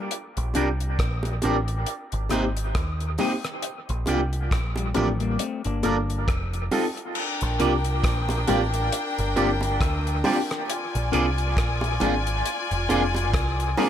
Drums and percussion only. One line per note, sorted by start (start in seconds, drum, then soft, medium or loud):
0.11 closed hi-hat medium
0.37 closed hi-hat soft
0.54 closed hi-hat medium
0.54 high bongo soft
0.80 closed hi-hat soft
0.99 kick loud
0.99 cross-stick loud
0.99 closed hi-hat medium
1.23 closed hi-hat medium
1.23 high bongo medium
1.42 closed hi-hat medium
1.42 high bongo medium
1.68 closed hi-hat medium
1.86 closed hi-hat medium
2.12 closed hi-hat soft
2.29 cross-stick medium
2.29 closed hi-hat medium
2.29 high bongo soft
2.57 closed hi-hat medium
2.75 kick loud
2.75 cross-stick medium
2.75 closed hi-hat medium
3.00 closed hi-hat soft
3.18 open hi-hat medium
3.18 high bongo medium
3.18 low bongo medium
3.44 cross-stick medium
3.44 closed hi-hat soft
3.62 closed hi-hat loud
3.89 closed hi-hat soft
4.06 closed hi-hat medium
4.06 high bongo soft
4.33 closed hi-hat soft
4.51 kick medium
4.51 cross-stick loud
4.51 closed hi-hat medium
4.76 closed hi-hat medium
4.76 high bongo medium
4.94 closed hi-hat medium
4.94 high bongo medium
5.20 closed hi-hat soft
5.39 closed hi-hat loud
5.64 closed hi-hat soft
5.83 closed hi-hat medium
5.83 high bongo soft
6.10 closed hi-hat soft
6.28 kick loud
6.28 cross-stick loud
6.28 closed hi-hat medium
6.53 closed hi-hat medium
6.71 open hi-hat medium
6.71 high bongo medium
6.71 low bongo medium
6.97 closed hi-hat soft
7.15 crash loud
7.41 closed hi-hat medium
7.60 closed hi-hat medium
7.84 closed hi-hat medium
8.04 kick loud
8.04 cross-stick loud
8.04 closed hi-hat medium
8.29 closed hi-hat medium
8.29 high bongo medium
8.47 closed hi-hat medium
8.47 high bongo medium
8.47 low bongo medium
8.74 closed hi-hat medium
8.92 closed hi-hat loud
9.19 closed hi-hat medium
9.37 closed hi-hat medium
9.61 closed hi-hat medium
9.61 high bongo medium
9.81 kick loud
9.81 cross-stick loud
9.81 closed hi-hat medium
10.07 closed hi-hat medium
10.24 open hi-hat medium
10.24 high bongo medium
10.24 low bongo medium
10.51 cross-stick medium
10.51 closed hi-hat medium
10.70 closed hi-hat loud
10.95 closed hi-hat soft
11.13 closed hi-hat medium
11.38 closed hi-hat soft
11.57 kick loud
11.57 cross-stick loud
11.57 closed hi-hat medium
11.81 closed hi-hat medium
11.81 high bongo medium
12.00 closed hi-hat medium
12.00 high bongo medium
12.00 low bongo medium
12.27 closed hi-hat medium
12.46 closed hi-hat loud
12.71 closed hi-hat medium
12.90 closed hi-hat medium
13.15 closed hi-hat medium
13.15 high bongo medium
13.34 kick loud
13.34 cross-stick loud
13.34 closed hi-hat medium
13.60 closed hi-hat medium
13.78 open hi-hat medium
13.78 high bongo medium
13.78 low bongo medium